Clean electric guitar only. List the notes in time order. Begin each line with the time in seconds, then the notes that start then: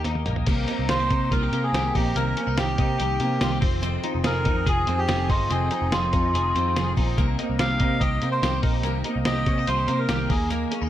Already playing: A#3 G4
0.05 D#4
0.26 A#3
0.47 A#3
0.68 D#4
0.89 F4
0.99 G4
1.10 D#4
1.31 F4
1.42 G4
1.53 A#3
1.74 G4
1.95 D#4
2.16 A#3
2.37 C#4
2.47 D#4
2.57 G4
2.78 D#4
2.99 G4
3.20 A#3
3.41 F4
3.51 G4
3.61 C4
3.82 C4
4.04 D#4
4.24 G#4
4.45 D#4
4.66 G#4
4.87 C4
5.08 G#4
5.29 D#4
5.50 C4
5.71 D#4
5.92 G#4
6.13 D#4
6.34 G#4
6.55 C4
6.76 G#4
6.97 D#4
7.17 A#3
7.38 D#4
7.59 G4
7.80 D#4
8.01 G4
8.22 A#3
8.42 G4
8.63 D#4
8.84 A#3
9.05 D#4
9.26 G4
9.47 C#4
9.58 D#4
9.67 F4
9.77 G4
9.88 A#3
10.09 G4
10.30 A#3
10.50 A#3
10.71 C#4
10.82 D#4